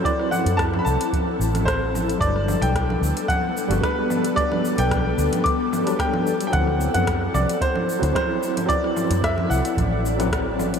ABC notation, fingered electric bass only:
X:1
M:4/4
L:1/16
Q:1/4=111
K:G
V:1 name="Fingered electric bass" clef=bass
z3 F,,2 z C,, z3 A,,,4- A,,, z | G,,,2 z B,,,2 z D,, z4 G,,, z4 | z3 B,,,2 z D,, z8 z | D,,2 z F,,2 z C,, z4 D,, z4 |
z3 F,,2 z C,, z A,,,6- A,,, z |]